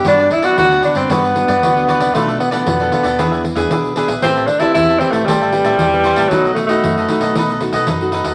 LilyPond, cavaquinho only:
\new Staff \with { instrumentName = "Cavaquinho" } { \time 4/4 \key g \major \tempo 4 = 115 <fis' g' b' d''>16 <g' b' d''>16 r16 <g' b' d''>8 <g' b' d''>16 <fis' g' b' d''>16 <g' b' d''>16 <fis' g' b' d''>16 <g' b' d''>16 r16 <g' b' d''>16 <fis' g' b' d''>8 <fis' g' b' d''>16 <g' b' d''>16 | <f' a' b' d''>16 <a' b' d''>16 r16 <a' b' d''>8 <a' b' d''>16 <f' a' b' d''>16 <a' b' d''>16 <d' gis' b' e''>16 <gis' b' e''>16 r16 <gis' b' e''>16 <d' gis' b' e''>8 <d' gis' b' e''>16 <gis' b' e''>16 | <g' c'' e'' a''>16 <c'' e'' a''>16 r16 <c'' e'' a''>8 <c'' e'' a''>16 <g' c'' e'' a''>16 <c'' e'' a''>16 <g' c'' e'' a''>16 <c'' e'' a''>16 r16 <c'' e'' a''>16 <g' c'' e'' a''>8 <g' c'' e'' a''>16 <c'' e'' a''>16 | <dis' a' b' dis''>16 <a' b' dis''>16 r16 <a' b' dis''>8 <a' b' dis''>16 <dis' a' b' dis''>16 <a' b' dis''>16 <dis' a' b' dis''>16 <a' b' dis''>16 r16 <a' b' dis''>16 <dis' a' b' dis''>8 <dis' a' b' dis''>16 <a' b' dis''>16 | }